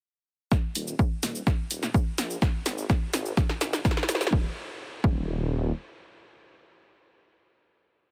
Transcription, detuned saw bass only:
0.75 D#1
1.23 D#1
1.71 D#1
2.18 A#1
2.66 G#1
3.13 G#1
3.61 G#1
4.09 F#1
4.33 D#1
5.04 D#1

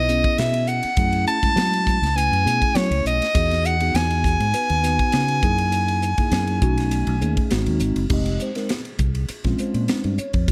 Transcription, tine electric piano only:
0.08 B3 C#4 E4 G#4
0.98 A3 C#4 E4 G#4
1.43 G#3 A3 C#4 E4
2.16 A3 C#4 E4 B4
2.45 A3 C#4 E4 G#4
3.34 B3 D#4 F#4 G#4
3.81 B3 D#4 F#4 G#4
4.54 B3 D#4 F#4 B4
4.83 B3 D#4 F#4 B4
5.44 A#3 D#4 E4 G#4
6.19 A#3 D#4 E4 G#4
6.62 A3 C#4 D#4 F#4
7.21 A3 C#4 D#4 G#4
7.51 G#3 C4 D#4 F#4
8.10 G#3 C4 D#4 G4 D#5
8.42 C5
8.56 G#3 C4 D#4 A#4
8.70 D#4 G4 G#4
9.45 G#3 C4 C#4 F4
9.59 G#3 C4 C#4 F4 C5
9.89 G#3 C4 C#4 D#4
10.19 C#4 F4 C#5
10.35 C#4 G4
10.48 G#3 C4 D#4 F4

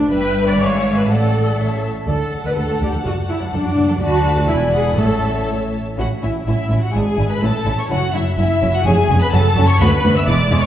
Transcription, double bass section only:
Already playing: D2
0.12 G1
0.60 G#1
1.09 A1
1.58 A1
2.08 D2
2.57 D2
2.81 D2
3.06 F#1
3.53 F#1
3.77 F#1
4.00 D2
4.48 E1
4.97 A1
5.99 A1
6.23 A1
6.47 A1
6.71 A1
6.95 G#1
7.18 G#1
7.42 A1
7.66 A1
7.90 F#1
8.14 F#1
8.38 F#1
8.61 F#1
8.85 F1
9.09 F1
9.33 F#1
9.57 F#1
9.80 D2
10.03 D2
10.27 E1
10.50 E1

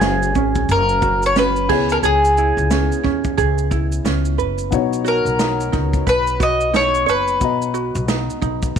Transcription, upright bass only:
Already playing: F#1
0.35 G#1
0.69 F#1
1.69 C#2
2.02 C#2
2.57 C#2
3.04 D#2
3.38 C#2
4.04 C#2
4.38 F#1
4.72 B1
5.25 B1
5.73 C#2
6.07 B1
7.07 F#1
7.41 B1
7.95 B1
8.42 B1

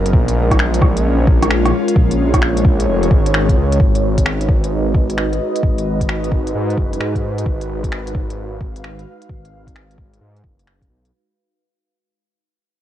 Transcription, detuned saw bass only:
Already playing: F#1
0.13 A#1
1.96 A#1
2.88 F1
3.11 G#1
3.57 C#2
3.80 G#1
5.63 G#1
6.55 G#2
6.77 F#1
7.00 G#2
7.46 G#1
9.30 G#1
10.21 G#2
10.44 F#1
10.90 B1

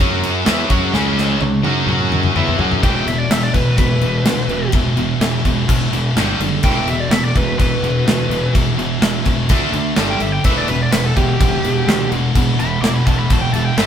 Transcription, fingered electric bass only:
0.00 F#2
0.47 E2
0.70 F#2
0.93 C#2
1.41 C#2
1.63 F#2
1.86 F#2
2.35 E2
2.59 F#2
2.83 E1
3.06 E1
3.30 E1
3.54 E1
3.77 E1
4.01 E1
4.24 D2
4.48 E1
4.72 E1
4.97 E1
5.20 E1
5.45 E1
5.69 E1
5.93 E1
6.16 G1
6.40 F#1
6.63 E1
6.86 E1
7.09 E1
7.35 E1
7.59 E1
7.83 E1
8.07 D2
8.29 E1
8.55 E1
8.77 E1
9.02 E1
9.26 E1
9.50 D2
9.73 D2
9.97 G1
10.21 G1
10.45 E1
10.69 E1
10.92 E1
11.16 E1
11.41 E1
11.64 E1
11.87 D2
12.12 E1
12.35 E1
12.59 E1
12.81 E1
13.06 E1
13.30 E1
13.53 E1
13.77 G1

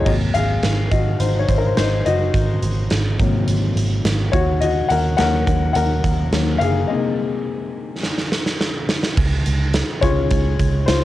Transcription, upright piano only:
0.05 C3 F#3 A#3 F#4 D#5
0.34 G#4 F5
0.91 F#4 D#5
1.20 D#4 C5
1.39 C#5
1.49 C5
1.58 A#4
1.67 C5
1.77 D#4 C5
2.06 F#4 D#5
3.20 C3 F#3 A#3
4.32 F#4 C#5
4.60 F#4 D#5
4.89 A#4 F#5
5.17 D#3 F#3 A#3 A#4 F#5
5.73 A#4 F#5
6.33 D#3 F#3 A#3
6.58 G#4 F5
6.87 C3 G#3 A#3 G#4 D#5
10.01 G#3 C#4 F4 C#5
10.86 F4 C5

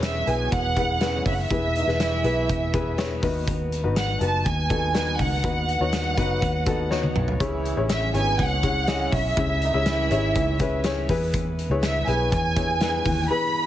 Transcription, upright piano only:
Already playing: E3 B3 E4 G#4 B4 C#5
0.27 B3 E4 G#4 B4
0.77 B3 E4 G#4 B4
1.01 B3 E4 G#4 B4
1.51 E3 B3 E4 G#4 B4
1.87 B3 E4 G#4 B4
2.24 B3 E4 G#4 B4
2.73 B3 E4 G#4 B4
2.98 B3 E4 G#4 C#5
3.22 D#3 B3 D#4 F#4 B4
3.84 B3 D#4 F#4 B4
4.21 B3 D#4 F#4 B4
4.70 B3 D#4 F#4 A4
4.94 B3 D#4 F#4 B4
5.19 D#3
5.43 B3 D#4 F#4 B4
5.81 B3 D#4 F#4 C#5
6.17 B3 D#4 F#4 B4
6.67 B3 D#4 F#4 A4
6.90 B3 D#4 F#4 C#5
7.40 C#3 C#4 E4 G#4 C#5
7.77 C#4 E4 G#4 C#5
8.14 C#4 E4 G#4 C#5
8.63 C#4 E4 G#4 C#5
8.88 C#4 E4 G#4 D#5
9.37 C#3 C#4 E4 G#4 E5
9.74 C#4 E4 G#4 E5
10.11 C#4 D#4 G#4 C#5
10.17 E4
10.60 C#4 E4 G#4 B4
10.85 C#4 E4 G#4 C#5
11.09 E3 B3 E4 G#4 B4
11.71 B3 E4 G#4 C#5
12.07 B3 E4 G#4 B4
12.56 B3 E4 G#4 C#5
12.81 B3 E4 G#4 B4
13.06 E3
13.30 B3 E4 G#4 B4

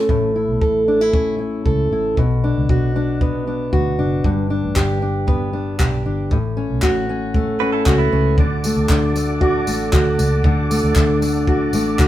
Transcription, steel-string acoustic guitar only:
Already playing: A3 C#4 A4
0.10 A2
0.36 E4
0.62 A4
0.88 D4
1.01 E4
1.13 C#4
1.38 E4
1.66 A4
1.92 E4
2.18 B2
2.44 D4
2.69 F#4
2.96 D4
3.21 B3
3.47 D4
3.73 F#4
3.99 D4
4.24 G2
4.50 D4
4.76 G4
5.02 D4
5.27 B3
5.53 D4
5.79 G4
6.06 D4
6.32 A2
6.57 C#4
6.83 F#4
7.09 C#4
7.35 A3
7.62 C#4
7.88 F#4
8.12 C#4
8.38 D3
8.65 A3
8.90 D4
9.16 A3
9.41 F#4
9.67 A3
9.93 F#4
10.18 D4
10.45 D3
10.70 A3
10.97 D4
11.22 A3
11.48 F#4
11.74 A3
12.00 F#4

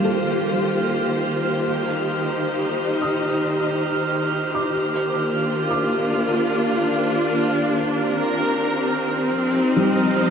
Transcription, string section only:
Already playing: D#3 A#3 F4 G4 C5
1.68 D#4
4.83 A#3
5.20 D4
5.31 F4
8.06 C4 A#4
9.32 F3
9.49 D#4
9.69 C5

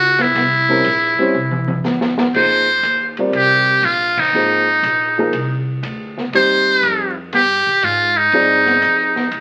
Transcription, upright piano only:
0.69 G3 C4 C#4 E4 A#4
1.19 G3 C4 C#4 E4 C5
2.35 F3 A#3 D#4 G#4 C5
3.18 G3 C4 F4 A#4 D5
4.34 F3 A#3 D#4 G#4 C5
5.18 F3 A#3 D#4 G#4 A#4
6.34 G3 C4 D#4 G4 C5
8.33 C4 D#4 F4 G#4 D5

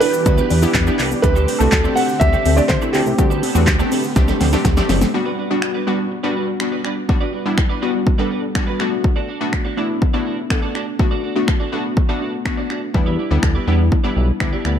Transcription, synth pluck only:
Already playing: B3 D4 E4 G4
0.26 B3 D4 E4 F#4
0.62 B3 D4 E4 G4
0.87 B3 D4 E4 G4
1.23 A3 C4 D4 G4
1.60 A3 C4 D4 F#4
1.84 A3 C4 D4 G4
2.21 A3 C4 D4 G4
2.57 A3 C4 D4 G4
2.82 A3 C4 D4 E4
3.18 A3 C4 D4 G4
3.55 A3 C4 D4 F#4
3.79 A3 C4 D4 G4
4.16 A3 C4 D4 G4
4.53 A3 C4 D4 G4
4.77 A3 C4 D4 G4
5.14 G3 B3 D4 F#4
5.50 G3 B3 D4 F#4
5.87 G3 B3 D4 F#4
6.24 G3 B3 D4 F#4
6.60 G3 B3 D4 F#4
7.09 G3 B3 D4 F#4
7.45 G3 B3 D4 E4
7.82 G3 B3 D4 F#4
8.19 G3 B3 D4 A4
8.55 G3 B3 D4 F#4
8.79 A3 B3 D4 F#4
9.41 A3 B3 D4 F#4
9.77 A3 B3 D4 E4
10.14 A3 B3 D4 E4
10.50 A3 B3 D4 A4
10.99 A3 B3 D4 F#4
11.36 A3 B3 D4 F#4
11.72 A3 B3 D4 F#4
12.09 A3 B3 D4 F#4
12.46 A3 B3 D4 F#4
12.94 G3 B3 D4 E4
13.31 G3 B3 D4 E4
13.67 G3 B3 D4 E4
14.04 G3 B3 D4 E4
14.40 G3 B3 D4 E4

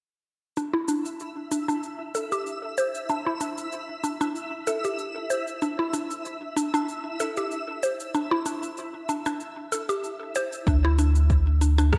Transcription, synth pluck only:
0.57 D4
0.74 E4
0.88 D4
1.51 D4
1.68 D4
2.15 A4
2.32 G4
2.78 C5
3.10 D4
3.27 E4
3.41 D4
4.04 D4
4.21 D4
4.67 A4
4.85 G4
5.30 C5
5.62 D4
5.79 E4
5.93 D4
6.56 D4
6.74 D4
7.20 A4
7.37 G4
7.83 C5
8.14 D4
8.31 E4
8.46 D4
9.09 D4
9.26 D4
9.72 A4
9.89 G4
10.36 C5
10.68 D4
10.85 E4
10.99 D4
11.61 D4
11.78 D4

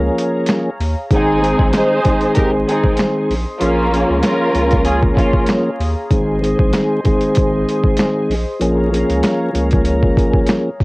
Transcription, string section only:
1.13 C4 D#4 G#4
1.73 D#4 G#4 C5
2.35 D#4 G4 A#4
2.68 C4 D#4 G#4
3.59 A#3 C#4 F4
4.24 C#4 F4 A#4
4.85 C#4 F4 G#4
5.16 A#3 C#4 F4

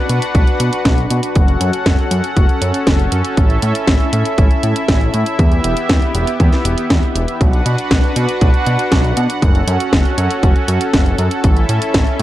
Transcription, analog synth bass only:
0.10 B2
0.35 B1
0.60 B2
0.85 B1
1.10 B2
1.36 F#1
1.61 F#2
1.86 F#1
2.11 F#2
2.37 F#1
2.62 F#2
2.87 F#1
3.12 F#2
3.37 A1
3.63 A2
3.88 A1
4.13 A2
4.38 A1
4.63 A2
4.89 A1
5.14 A2
5.39 E2
5.64 E1
5.90 E2
6.15 E1
6.40 E2
6.65 E1
6.90 E2
7.15 E1
7.41 B1
7.66 B2
7.91 B1
8.16 B2
8.42 B1
8.67 B2
8.92 B1
9.17 B2
9.42 F#1
9.67 F#2
9.93 F#1
10.18 F#2
10.43 F#1
10.68 F#2
10.94 F#1
11.19 F#2
11.44 A1
11.69 A2
11.94 A1

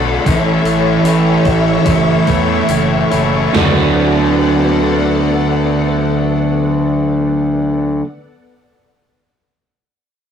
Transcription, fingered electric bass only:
Already playing: B1
0.27 A1
0.65 A1
1.03 A1
1.45 A1
1.86 F#1
2.27 E2
2.69 F#1
3.12 F#1
3.55 D2

